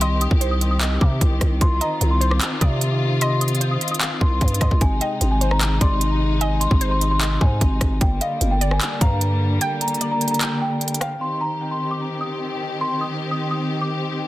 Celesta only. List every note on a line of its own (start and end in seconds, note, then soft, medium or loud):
0.01 0.20 C6 medium
0.21 0.50 D#6 medium
0.51 0.70 D#6 medium
0.71 0.99 D#6 medium
1.02 1.58 D6 medium
1.61 1.80 C6 medium
1.81 2.09 A#5 medium
2.11 2.30 C6 medium
2.31 2.59 D6 medium
2.61 3.17 D#6 medium
3.22 3.40 C6 medium
3.41 3.69 D#6 medium
3.71 3.90 D#6 medium
3.91 4.19 D#6 medium
4.21 4.59 C6 medium
4.61 4.80 C6 medium
4.81 5.00 G#5 medium
5.01 5.29 G5 medium
5.31 5.50 G#5 medium
5.51 5.79 A#5 medium
5.81 6.38 C6 medium
6.41 6.60 G#5 medium
6.61 6.89 C6 medium
6.91 7.10 C6 medium
7.11 7.39 C6 medium
7.41 7.97 G#5 medium
8.01 8.20 G5 medium
8.21 8.49 F5 medium
8.51 8.70 G5 medium
8.72 9.00 G#5 medium
9.01 9.58 A#5 medium
9.61 9.80 G5 medium
9.81 10.09 A#5 medium
10.11 10.30 A#5 medium
10.31 10.59 A#5 medium
10.61 10.99 G5 medium
11.01 11.20 G5 medium
11.21 11.40 C6 medium
11.41 11.69 A#5 medium
11.71 11.90 C6 medium
11.91 12.19 D6 medium
12.21 12.77 D#6 medium
12.81 13.00 C6 medium
13.01 13.29 D#6 medium
13.31 13.50 D#6 medium
13.51 13.79 D#6 medium
13.81 14.28 D6 medium